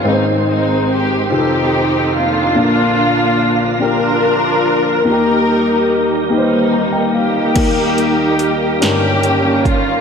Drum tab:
CC |------|------|------|x-----|
HH |------|------|------|xxxxxx|
SD |------|------|------|---o--|
BD |------|------|------|o----o|